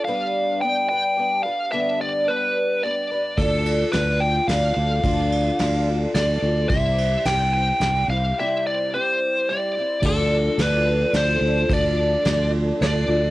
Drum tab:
CC |------|------|------|------|
RD |------|------|xxx-x-|xxx-x-|
SD |------|------|--o-o-|--o-o-|
BD |------|------|o-----|o-----|

CC |------|------|x-----|------|
RD |xxx-x-|------|--x-x-|x-x-x-|
SD |--o-o-|------|--o-o-|--o-o-|
BD |o-----|------|o-----|o-----|